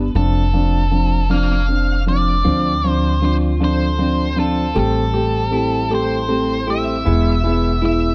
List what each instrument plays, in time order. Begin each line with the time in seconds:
Already playing: upright bass G1
0.15 upright bass F1, grand piano F3 C4 D4, lead electric guitar A4
0.53 grand piano F3 C4 D4
0.91 grand piano F3 C4 D4
1.29 grand piano F3 C4 D4, lead electric guitar F5
1.69 grand piano C4 D4
2.07 grand piano F3 C4 D4, lead electric guitar D5
2.45 upright bass D2, grand piano F3 C4 D4, clean electric guitar C4
2.84 grand piano F3 C4 D4, clean electric guitar C4
2.89 lead electric guitar C5
3.21 grand piano F3 C4 D4, clean electric guitar F4, lead electric guitar C5
3.60 grand piano F3 C4 D4, clean electric guitar A4
3.64 lead electric guitar C5
3.98 grand piano F3 C4 D4, clean electric guitar C4
4.36 grand piano F3 C4 D4, clean electric guitar F4, lead electric guitar A4
4.75 upright bass A1, clean electric guitar G3, grand piano A3 C4 G4
4.79 lead electric guitar A4
5.13 grand piano A3 C4 G4, clean electric guitar C4
5.51 grand piano A3 C4 G4, clean electric guitar E4
5.90 grand piano A3 C4 G4, clean electric guitar A4
5.95 lead electric guitar C5
6.28 grand piano A3 C4 G4, clean electric guitar C4
6.67 grand piano A3 C4 G4, clean electric guitar E4, lead electric guitar E5
7.04 upright bass E1, grand piano G#3 B3 E4, clean electric guitar B3
7.44 grand piano G#3 B3 E4, clean electric guitar B3
7.81 grand piano G#3 B3 E4, clean electric guitar E4
7.85 lead electric guitar E5